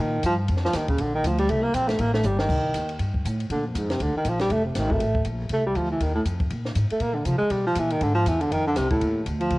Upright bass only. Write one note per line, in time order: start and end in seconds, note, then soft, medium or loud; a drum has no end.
0.00 0.23 A#2 medium
0.23 0.48 G2 medium
0.49 0.73 F2 medium
0.73 0.98 D#2 medium
0.99 1.24 A#1 medium
1.24 1.48 D2 loud
1.49 1.73 C2 medium
1.74 1.98 A#1 medium
1.99 2.24 A1 medium
2.24 2.48 G1 loud
2.49 2.74 C2 medium
2.74 2.99 D#2 medium
2.99 3.24 G2 medium
3.25 3.49 A2 medium
3.50 3.75 A#2 medium
3.75 4.00 F2 medium
4.00 4.14 D2 medium
4.15 muted upright bass stroke soft
4.25 4.50 A#1 medium
4.50 4.75 F1 medium
4.75 5.00 G#1 medium
5.00 5.25 A1 medium
5.25 5.50 A#1 medium
5.50 5.75 C2 medium
5.75 6.00 D2 medium
6.00 6.24 D#2 medium
6.25 6.50 F2 medium
6.51 6.75 A#2 medium
6.75 6.89 G#2 medium
6.91 muted upright bass stroke soft
7.00 7.25 A#2 medium
7.26 7.40 C3 medium
7.41 muted upright bass stroke soft
7.51 7.75 B2 medium
7.76 8.00 A#2 medium
8.01 8.25 G#2 medium
8.26 8.50 E2 loud
8.52 8.76 F2 medium
8.77 9.00 C2 medium
9.01 9.25 D#2 medium
9.26 9.50 D2 medium
9.50 9.59 C2 medium